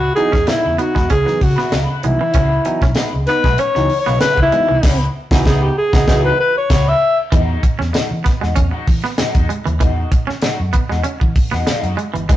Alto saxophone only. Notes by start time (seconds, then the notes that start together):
Already playing: F#4
0.15 G#4
0.49 E4
0.80 F#4
1.11 G#4
1.43 F#4
2.05 E4
3.27 B4
3.59 C#5
4.00 C#5
4.21 B4
4.42 E4
5.45 G#4
5.61 G4
5.78 G#4
6.25 B4
6.40 B4
6.58 C#5
6.88 E5